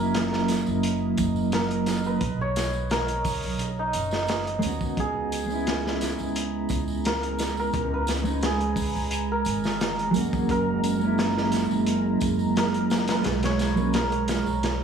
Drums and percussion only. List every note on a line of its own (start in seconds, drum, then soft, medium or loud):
0.14 snare loud
0.14 closed hi-hat loud
0.14 tambourine soft
0.33 snare medium
0.48 snare soft
0.48 closed hi-hat medium
0.48 tambourine loud
0.66 tambourine medium
0.83 closed hi-hat medium
0.83 tambourine soft
1.18 kick medium
1.18 closed hi-hat medium
1.18 tambourine loud
1.36 tambourine soft
1.52 snare loud
1.52 closed hi-hat medium
1.52 tambourine soft
1.71 closed hi-hat soft
1.86 snare soft
1.86 closed hi-hat medium
1.86 tambourine medium
2.04 tambourine medium
2.21 kick loud
2.21 closed hi-hat medium
2.21 tambourine soft
2.56 snare medium
2.56 closed hi-hat medium
2.56 tambourine loud
2.73 tambourine medium
2.90 snare loud
2.90 closed hi-hat medium
2.90 tambourine soft
3.08 closed hi-hat soft
3.24 kick medium
3.24 open hi-hat medium
3.24 tambourine medium
3.43 tambourine medium
3.59 closed hi-hat medium
3.59 tambourine soft
3.93 closed hi-hat medium
3.93 tambourine medium
4.11 snare soft
4.11 tambourine medium
4.27 snare loud
4.27 closed hi-hat medium
4.27 tambourine soft
4.47 closed hi-hat soft
4.62 closed hi-hat medium
4.62 tambourine medium
4.81 kick medium
4.81 tambourine soft
4.97 kick loud
4.97 closed hi-hat medium
4.97 tambourine soft
5.32 closed hi-hat medium
5.32 tambourine loud
5.50 tambourine medium
5.66 snare loud
5.66 closed hi-hat medium
5.66 tambourine soft
5.87 snare medium
6.01 snare soft
6.01 closed hi-hat medium
6.01 tambourine medium
6.18 tambourine medium
6.35 closed hi-hat medium
6.35 tambourine soft
6.69 kick loud
6.69 closed hi-hat medium
6.69 tambourine medium
6.88 tambourine medium
7.04 snare loud
7.04 closed hi-hat medium
7.04 tambourine soft
7.23 closed hi-hat soft
7.39 snare medium
7.39 closed hi-hat medium
7.39 tambourine medium
7.57 tambourine medium
7.73 kick loud
7.73 closed hi-hat medium
7.73 tambourine soft
8.07 snare medium
8.07 closed hi-hat medium
8.07 tambourine medium
8.25 tambourine medium
8.41 snare loud
8.41 closed hi-hat medium
8.41 tambourine soft
8.61 closed hi-hat soft
8.76 kick medium
8.76 open hi-hat medium
8.76 tambourine medium
8.96 tambourine soft
9.11 closed hi-hat medium
9.11 tambourine soft
9.45 closed hi-hat medium
9.45 tambourine medium
9.64 snare soft
9.64 tambourine medium
9.80 snare loud
9.80 closed hi-hat medium
9.80 tambourine soft
9.99 closed hi-hat soft
10.14 closed hi-hat medium
10.14 tambourine medium
10.33 kick loud
10.33 tambourine soft
10.49 kick loud
10.49 closed hi-hat medium
10.49 tambourine soft
10.84 closed hi-hat medium
10.84 tambourine medium
11.01 tambourine medium
11.18 snare loud
11.18 closed hi-hat loud
11.18 tambourine soft
11.38 snare medium
11.52 snare soft
11.52 closed hi-hat medium
11.52 tambourine medium
11.71 tambourine soft
11.87 closed hi-hat medium
11.87 tambourine soft
12.20 kick medium
12.20 closed hi-hat medium
12.20 tambourine medium
12.39 tambourine soft
12.56 snare loud
12.56 closed hi-hat loud
12.56 tambourine soft
12.74 closed hi-hat soft
12.90 snare medium
12.90 closed hi-hat medium
12.90 tambourine medium
13.08 snare loud
13.08 closed hi-hat medium
13.08 tambourine soft
13.24 snare loud
13.24 closed hi-hat medium
13.24 tambourine soft
13.43 snare loud
13.43 closed hi-hat medium
13.59 snare medium
13.59 closed hi-hat medium
13.59 tambourine medium
13.77 tambourine medium
13.93 snare loud
13.93 closed hi-hat medium
13.93 tambourine soft
14.12 closed hi-hat soft
14.28 snare medium
14.28 closed hi-hat medium
14.28 tambourine medium
14.46 tambourine soft
14.63 snare loud
14.63 closed hi-hat medium
14.63 tambourine soft